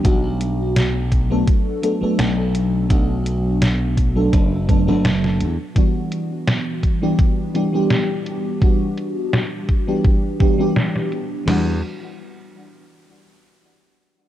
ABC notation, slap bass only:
X:1
M:4/4
L:1/16
Q:"Swing 16ths" 1/4=84
K:Em
V:1 name="Slap bass" clef=bass
B,,,8 z4 B,,,4 | B,,,8 F,,,3 F,,,3 E,, z | z16 | z16 |
E,,2 z12 z2 |]